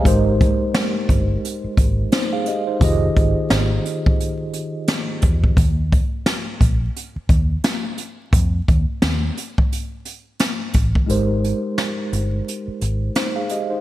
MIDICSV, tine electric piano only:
0, 0, Header, 1, 2, 480
1, 0, Start_track
1, 0, Tempo, 689655
1, 38, Time_signature, 4, 2, 24, 8
1, 9609, End_track
2, 0, Start_track
2, 0, Title_t, "Tine electric piano"
2, 0, Program_c, 0, 4
2, 0, Control_c, 0, 64, 127
2, 0, Note_on_c, 0, 75, 65
2, 22, Note_on_c, 0, 56, 78
2, 29, Note_on_c, 0, 63, 71
2, 36, Note_on_c, 0, 67, 68
2, 43, Note_on_c, 0, 70, 71
2, 47, Control_c, 0, 64, 0
2, 51, Note_on_c, 0, 72, 93
2, 169, Note_off_c, 0, 75, 0
2, 190, Control_c, 0, 64, 127
2, 1445, Note_off_c, 0, 63, 0
2, 1449, Note_off_c, 0, 67, 0
2, 1453, Note_off_c, 0, 70, 0
2, 1457, Note_off_c, 0, 72, 0
2, 1489, Note_on_c, 0, 72, 69
2, 1494, Note_on_c, 0, 63, 60
2, 1618, Note_off_c, 0, 72, 0
2, 1620, Note_on_c, 0, 77, 70
2, 1621, Note_off_c, 0, 63, 0
2, 1624, Note_on_c, 0, 68, 63
2, 1713, Note_off_c, 0, 77, 0
2, 1715, Note_off_c, 0, 68, 0
2, 1726, Note_on_c, 0, 75, 66
2, 1730, Note_on_c, 0, 67, 61
2, 1856, Note_off_c, 0, 75, 0
2, 1859, Note_off_c, 0, 67, 0
2, 1860, Note_on_c, 0, 72, 67
2, 1864, Note_on_c, 0, 63, 53
2, 1922, Note_off_c, 0, 56, 0
2, 1947, Note_on_c, 0, 51, 79
2, 1955, Note_on_c, 0, 65, 69
2, 1962, Note_on_c, 0, 67, 73
2, 1966, Control_c, 0, 64, 0
2, 1970, Note_on_c, 0, 68, 68
2, 1976, Note_on_c, 0, 75, 84
2, 2068, Control_c, 0, 64, 127
2, 2088, Note_off_c, 0, 72, 0
2, 2090, Note_off_c, 0, 63, 0
2, 3844, Note_off_c, 0, 51, 0
2, 3849, Note_off_c, 0, 65, 0
2, 3852, Note_off_c, 0, 67, 0
2, 3856, Note_off_c, 0, 68, 0
2, 3859, Note_off_c, 0, 75, 0
2, 3888, Control_c, 0, 64, 0
2, 7700, Note_on_c, 0, 56, 77
2, 7708, Note_on_c, 0, 63, 70
2, 7715, Note_on_c, 0, 67, 66
2, 7722, Note_on_c, 0, 70, 68
2, 7730, Note_on_c, 0, 72, 86
2, 7831, Control_c, 0, 64, 127
2, 9125, Note_off_c, 0, 63, 0
2, 9128, Note_off_c, 0, 67, 0
2, 9132, Note_off_c, 0, 70, 0
2, 9136, Note_off_c, 0, 72, 0
2, 9167, Note_on_c, 0, 72, 66
2, 9171, Note_on_c, 0, 63, 60
2, 9297, Note_off_c, 0, 72, 0
2, 9298, Note_on_c, 0, 77, 69
2, 9299, Note_off_c, 0, 63, 0
2, 9302, Note_on_c, 0, 68, 61
2, 9392, Note_off_c, 0, 77, 0
2, 9394, Note_off_c, 0, 68, 0
2, 9404, Note_on_c, 0, 75, 67
2, 9408, Note_on_c, 0, 67, 58
2, 9536, Note_off_c, 0, 75, 0
2, 9537, Note_on_c, 0, 72, 64
2, 9538, Note_off_c, 0, 67, 0
2, 9542, Note_on_c, 0, 63, 50
2, 9601, Note_off_c, 0, 56, 0
2, 9609, Note_off_c, 0, 63, 0
2, 9609, Note_off_c, 0, 72, 0
2, 9609, End_track
0, 0, End_of_file